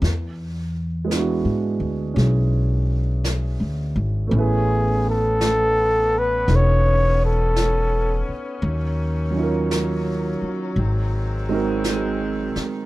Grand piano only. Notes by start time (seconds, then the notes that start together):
1.05 G#3 B3
1.10 D4 E4
1.16 F#4
2.14 C#4 E4 G#4
4.27 A3 B3
4.33 C#4 E4
4.39 B4
6.48 C#4 D#4 A4
9.31 F#3 C#4
9.37 D#4 F4
9.43 A#4
11.49 G#3 C4 D#4 F#4
11.54 A#4